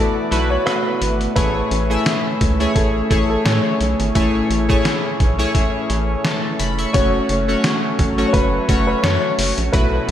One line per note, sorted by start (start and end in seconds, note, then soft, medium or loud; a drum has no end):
0.00 1.38 B2 medium
0.00 1.34 E3 medium
0.00 0.31 A3 medium
0.00 6.91 A3 medium
0.00 1.34 B3 medium
0.00 0.31 E4 medium
0.00 0.32 F#4 medium
0.00 0.47 A4 medium
0.00 0.32 B4 medium
0.00 0.14 D5 medium
0.31 0.58 B1 medium
0.31 0.54 A3 medium
0.31 0.55 E4 medium
0.31 0.55 F#4 medium
0.31 0.55 B4 medium
0.31 closed hi-hat medium
0.50 0.67 C#5 medium
0.66 1.10 A3 medium
0.66 1.11 E4 medium
0.66 1.11 F#4 medium
0.66 1.16 B4 medium
0.66 1.11 B4 medium
0.66 cross-stick loud
0.66 closed hi-hat medium
1.01 1.28 G#1 medium
1.01 closed hi-hat medium
1.21 closed hi-hat medium
1.36 1.63 A1 loud
1.36 2.37 A2 medium
1.36 6.90 E3 medium
1.36 1.69 A3 medium
1.36 9.69 C#4 medium
1.36 1.69 E4 medium
1.36 1.69 G#4 medium
1.36 2.80 B4 medium
1.36 1.69 C#5 medium
1.36 kick loud
1.36 closed hi-hat medium
1.71 1.97 A1 loud
1.71 closed hi-hat medium
1.90 2.33 A3 medium
1.90 2.33 E4 medium
1.90 2.33 G#4 medium
1.90 2.33 E5 medium
2.06 snare loud
2.06 closed hi-hat medium
2.41 2.67 C#2 medium
2.41 kick medium
2.41 closed hi-hat medium
2.60 2.92 A3 medium
2.60 2.92 E4 medium
2.60 2.93 G#4 medium
2.60 2.93 C#5 medium
2.60 closed hi-hat soft
2.75 3.02 A1 medium
2.75 3.28 A4 medium
2.75 kick medium
2.75 closed hi-hat medium
3.10 3.37 A1 medium
3.10 3.33 A3 medium
3.10 3.34 E4 medium
3.10 3.34 G#4 medium
3.10 3.34 C#5 medium
3.10 kick medium
3.10 closed hi-hat medium
3.30 3.46 A4 medium
3.45 3.60 A2 loud
3.45 3.89 A3 medium
3.45 3.90 E4 medium
3.45 3.90 G#4 medium
3.45 3.96 C#5 medium
3.45 3.90 C#5 medium
3.45 snare loud
3.45 closed hi-hat medium
3.80 3.95 B1 medium
3.80 closed hi-hat medium
4.00 4.12 G#1 medium
4.00 closed hi-hat medium
4.15 4.42 A1 loud
4.15 5.16 A2 medium
4.15 4.48 A3 medium
4.15 4.48 E4 medium
4.15 4.48 G#4 medium
4.15 4.48 C#5 medium
4.15 kick loud
4.15 closed hi-hat loud
4.50 4.76 A1 loud
4.50 closed hi-hat medium
4.69 5.12 A3 medium
4.69 5.12 E4 medium
4.69 5.12 G#4 medium
4.69 5.12 C#5 medium
4.69 kick medium
4.85 snare loud
4.85 closed hi-hat medium
5.20 5.46 B1 medium
5.20 kick medium
5.20 closed hi-hat medium
5.38 5.71 A3 medium
5.38 5.71 E4 medium
5.38 5.72 G#4 medium
5.38 5.72 C#5 medium
5.38 closed hi-hat soft
5.55 kick medium
5.55 closed hi-hat medium
5.90 6.16 A1 medium
5.90 closed hi-hat medium
6.25 6.58 C#5 soft
6.25 6.58 A5 medium
6.25 snare loud
6.25 closed hi-hat medium
6.59 6.86 F1 medium
6.59 6.78 B5 medium
6.59 closed hi-hat medium
6.79 7.12 E5 soft
6.79 7.12 C#6 medium
6.79 closed hi-hat medium
6.93 7.21 F#1 loud
6.93 9.71 F#3 medium
6.93 7.27 A3 medium
6.93 10.11 A3 medium
6.93 7.27 C#4 medium
6.93 7.27 F#4 medium
6.93 8.23 C#5 loud
6.93 7.28 C#5 medium
6.93 kick loud
6.93 closed hi-hat medium
7.29 7.56 F#1 loud
7.29 closed hi-hat medium
7.48 7.91 A3 medium
7.48 7.91 C#4 medium
7.48 7.91 F#4 medium
7.48 7.91 C#5 medium
7.64 snare loud
7.64 closed hi-hat medium
7.99 8.25 A1 medium
7.99 kick medium
7.99 closed hi-hat medium
8.18 8.50 A3 medium
8.18 8.50 C#4 medium
8.18 8.51 F#4 medium
8.18 8.51 C#5 medium
8.18 closed hi-hat soft
8.27 8.34 C#5 medium
8.33 8.60 F#1 medium
8.33 8.86 B4 medium
8.33 kick medium
8.33 closed hi-hat medium
8.68 8.95 F#1 medium
8.68 8.92 A3 medium
8.68 8.92 C#4 medium
8.68 8.92 F#4 medium
8.68 8.92 C#5 medium
8.68 kick medium
8.68 closed hi-hat medium
8.87 9.04 B4 medium
9.03 9.18 F#2 medium
9.03 9.48 A3 medium
9.03 9.48 C#4 medium
9.03 9.48 F#4 medium
9.03 9.54 C#5 medium
9.03 9.48 C#5 medium
9.03 snare loud
9.03 closed hi-hat medium
9.39 9.53 F#1 medium
9.39 open hi-hat medium
9.58 9.70 A#1 medium
9.58 closed hi-hat medium
9.72 10.00 B1 loud
9.72 10.11 B2 medium
9.72 10.11 E3 medium
9.72 10.06 A3 medium
9.72 10.11 B3 medium
9.72 10.06 E4 medium
9.72 10.06 F#4 medium
9.72 10.11 B4 medium
9.72 10.07 B4 medium
9.72 kick loud
9.72 closed hi-hat medium